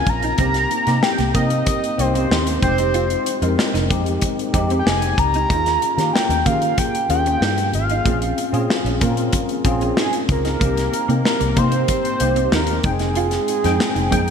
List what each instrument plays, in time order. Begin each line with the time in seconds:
Already playing: tine electric piano C4 C#4 F4 G#4 A#4, analog synth lead G#5
0.06 fingered electric bass A#1, analog synth lead A#5, kick, closed hi-hat
0.23 clean electric guitar D#4, closed hi-hat
0.38 fingered electric bass C2, tine electric piano A#3 C4 D#4 G4, clean electric guitar C4, kick, closed hi-hat
0.54 snare, closed hi-hat
0.71 muted clean electric guitar stroke, closed hi-hat
0.87 fingered electric bass C3, tine electric piano A#3 C4 D#4 G4, clean electric guitar A#3, snare, closed hi-hat
1.03 analog synth lead G5, snare
1.18 fingered electric bass C2, clean electric guitar A#3, snare, closed hi-hat
1.34 fingered electric bass C3, clean electric guitar A#3, tine electric piano A#3 C4 D#4 A#4, analog synth lead D#5, kick, closed hi-hat
1.50 closed hi-hat
1.66 analog synth lead D#5, muted clean electric guitar stroke, kick, closed hi-hat
1.84 closed hi-hat
1.98 fingered electric bass C2, tine electric piano A#3 C4 C#4 G4, clean electric guitar C4, analog synth lead C5, closed hi-hat
2.06 tine electric piano D#4
2.15 clean electric guitar C4, closed hi-hat
2.31 fingered electric bass D#2, clean electric guitar D#4, snare
2.47 muted clean electric guitar stroke, closed hi-hat
2.62 fingered electric bass F1, tine electric piano G#3 C4 D#4 G4, analog synth lead C5, kick, closed hi-hat
2.78 clean electric guitar D#4, closed hi-hat
2.94 clean electric guitar F4, closed hi-hat
3.10 closed hi-hat
3.26 muted clean electric guitar stroke, closed hi-hat
3.41 fingered electric bass F2, tine electric piano G#3 C4 D#4 A#4, clean electric guitar D#4, closed hi-hat
3.58 muted clean electric guitar stroke, snare
3.74 fingered electric bass F1, clean electric guitar D#4, snare, closed hi-hat
3.90 fingered electric bass F2, tine electric piano G#3 C4 D#4 G4, clean electric guitar A#3, kick, closed hi-hat
4.06 closed hi-hat
4.22 muted clean electric guitar stroke, kick, closed hi-hat
4.39 closed hi-hat
4.53 fingered electric bass F2, tine electric piano G#3 C4 D#4 G4, clean electric guitar C4, kick, closed hi-hat
4.70 clean electric guitar C4, closed hi-hat
4.79 analog synth lead G5
4.86 fingered electric bass F1, clean electric guitar D#4, analog synth lead G#5, snare
5.02 muted clean electric guitar stroke, closed hi-hat
5.18 fingered electric bass C#2, analog synth lead A#5, kick, closed hi-hat
5.34 clean electric guitar D#4, closed hi-hat
5.49 fingered electric bass D#2, tine electric piano A#3 C#4 F4 G#4, clean electric guitar D#4, kick, closed hi-hat
5.66 snare, closed hi-hat
5.82 muted clean electric guitar stroke, closed hi-hat
5.97 fingered electric bass D#3, tine electric piano A#3 C#4 F4 G4, clean electric guitar C#4, snare, closed hi-hat
6.13 analog synth lead G5, muted clean electric guitar stroke, snare
6.29 fingered electric bass D#2, clean electric guitar C#4, closed hi-hat
6.45 fingered electric bass D#3, tine electric piano A#3 C#4 F4 G#4, clean electric guitar A#3, analog synth lead F5, kick, closed hi-hat
6.62 closed hi-hat
6.78 analog synth lead G5, muted clean electric guitar stroke, kick, closed hi-hat
6.95 closed hi-hat
7.09 fingered electric bass D#2, tine electric piano A#3 C#4 F4 G#4, clean electric guitar C#4, analog synth lead G5, closed hi-hat
7.26 clean electric guitar C#4, closed hi-hat
7.41 fingered electric bass G2, clean electric guitar D#4, snare
7.58 muted clean electric guitar stroke, closed hi-hat
7.73 fingered electric bass G#1, analog synth lead F5, closed hi-hat
7.89 clean electric guitar D#4, closed hi-hat
8.05 fingered electric bass A#1, clean electric guitar A#3, tine electric piano C4 C#4 F4 G#4, kick, closed hi-hat
8.22 closed hi-hat
8.38 muted clean electric guitar stroke, closed hi-hat
8.52 fingered electric bass A#2, tine electric piano C4 C#4 F4 G#4, clean electric guitar C#4, closed hi-hat
8.70 muted clean electric guitar stroke, snare
8.84 fingered electric bass A#1, clean electric guitar C#4, closed hi-hat
9.01 fingered electric bass A#2, clean electric guitar A#3, tine electric piano C4 C#4 F4 A#4, kick, closed hi-hat
9.17 closed hi-hat
9.33 muted clean electric guitar stroke, kick, closed hi-hat
9.49 closed hi-hat
9.65 fingered electric bass A#1, tine electric piano C4 C#4 F4 G#4, clean electric guitar C#4, kick, closed hi-hat
9.81 clean electric guitar C#4, closed hi-hat
9.97 clean electric guitar D#4, analog synth lead G#4, snare
10.13 muted clean electric guitar stroke, closed hi-hat
10.29 fingered electric bass C#2, analog synth lead A#4, kick, closed hi-hat
10.45 clean electric guitar D#4, snare, closed hi-hat
10.60 fingered electric bass C2, tine electric piano A#3 C4 D#4 G4, clean electric guitar C4, kick, closed hi-hat
10.77 snare, closed hi-hat
10.92 muted clean electric guitar stroke, closed hi-hat
11.08 fingered electric bass C3, clean electric guitar A#3, tine electric piano A#3 C4 D#4 A#4, closed hi-hat
11.24 analog synth lead A#4, muted clean electric guitar stroke, snare
11.40 fingered electric bass C2, clean electric guitar A#3, closed hi-hat
11.56 fingered electric bass C3, clean electric guitar A#3, tine electric piano A#3 C4 D#4 G4, analog synth lead C5, kick, closed hi-hat
11.72 closed hi-hat
11.88 analog synth lead C5, muted clean electric guitar stroke, kick, closed hi-hat
12.05 closed hi-hat
12.20 fingered electric bass C2, tine electric piano A#3 C4 D#4 G4, clean electric guitar C4, closed hi-hat
12.36 clean electric guitar C4, closed hi-hat
12.52 fingered electric bass D#2, clean electric guitar D#4, analog synth lead A#4, snare
12.67 muted clean electric guitar stroke, closed hi-hat
12.83 fingered electric bass F1, tine electric piano G#3 C4 D#4 G5, analog synth lead G#4, kick, closed hi-hat
12.99 clean electric guitar D#4, snare, closed hi-hat
13.15 clean electric guitar F4, closed hi-hat
13.31 snare, closed hi-hat
13.48 muted clean electric guitar stroke, closed hi-hat
13.64 fingered electric bass F2, tine electric piano G#3 C4 D#4 G5, clean electric guitar D#4, snare, closed hi-hat
13.80 muted clean electric guitar stroke, snare
13.95 fingered electric bass F1, clean electric guitar D#4, closed hi-hat
14.11 fingered electric bass F2, tine electric piano G#3 C4 D#4 G5, clean electric guitar A#3, kick, closed hi-hat